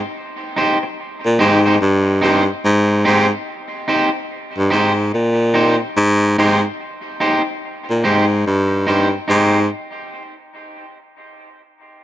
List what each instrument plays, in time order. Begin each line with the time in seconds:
0.56 clean electric guitar D#4 G4 C5
0.83 muted clean electric guitar stroke
1.25 baritone saxophone A#2
1.39 baritone saxophone G#2, clean electric guitar D#4 G4 C5
1.66 clean electric guitar D#4 G4 C5
1.81 baritone saxophone G2
2.22 baritone saxophone G2, clean electric guitar D#4 G4 C5
2.65 baritone saxophone G#2
3.05 baritone saxophone G#2, clean electric guitar D#4 G4 C5
3.88 clean electric guitar D#4 G4 C5
4.58 baritone saxophone G2
4.70 baritone saxophone G#2, clean electric guitar D#4 G4 C5
5.14 baritone saxophone A#2
5.54 clean electric guitar D#4 G4 C5
5.97 baritone saxophone G#2
6.38 baritone saxophone G#2, clean electric guitar D#4 G4 C5
7.20 clean electric guitar D#4 G4 C5
7.90 baritone saxophone A#2
8.04 baritone saxophone G#2, clean electric guitar D#4 G4 C5
8.47 baritone saxophone G2
8.87 baritone saxophone G2, clean electric guitar D#4 G4 C5
9.28 baritone saxophone G#2, clean electric guitar D#4 G4 C5